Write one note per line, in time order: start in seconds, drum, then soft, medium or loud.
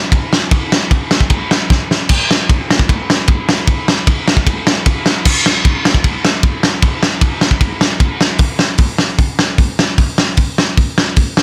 0.12 kick loud
0.12 ride medium
0.33 snare loud
0.51 kick loud
0.51 ride medium
0.72 snare loud
0.91 kick loud
0.91 ride medium
1.11 snare loud
1.21 kick medium
1.30 kick medium
1.30 ride medium
1.51 snare loud
1.70 kick loud
1.70 snare medium
1.91 snare loud
2.09 kick loud
2.09 crash loud
2.31 snare loud
2.49 kick loud
2.49 ride medium
2.71 snare loud
2.79 kick medium
2.89 kick medium
2.89 ride medium
3.10 snare loud
3.27 kick loud
3.27 ride medium
3.49 snare loud
3.67 kick loud
3.67 ride medium
3.88 snare loud
4.07 kick loud
4.07 ride medium
4.28 snare loud
4.37 kick medium
4.47 kick loud
4.47 ride medium
4.67 snare loud
4.86 kick loud
4.86 ride medium
5.06 snare loud
5.25 kick loud
5.25 crash loud
5.46 snare loud
5.65 kick loud
5.65 ride medium
5.85 snare loud
5.94 kick medium
6.04 kick medium
6.04 ride medium
6.25 snare loud
6.43 kick loud
6.43 ride medium
6.63 snare loud
6.82 kick loud
6.82 ride medium
7.03 snare loud
7.21 kick loud
7.21 ride medium
7.41 snare loud
7.51 kick medium
7.60 kick medium
7.60 ride medium
7.81 snare loud
8.00 kick loud
8.00 ride medium
8.21 snare loud
8.38 kick loud
8.38 open hi-hat medium
8.59 snare loud
8.78 kick loud
8.78 open hi-hat medium
8.98 snare medium
9.18 kick loud
9.18 open hi-hat soft
9.39 snare loud
9.58 kick loud
9.58 open hi-hat soft
9.79 snare loud
9.98 kick loud
9.98 open hi-hat medium
10.18 snare loud
10.37 kick loud
10.37 open hi-hat medium
10.58 snare loud
10.77 kick loud
10.77 open hi-hat soft
10.98 snare loud
11.16 kick loud
11.16 open hi-hat medium
11.37 snare loud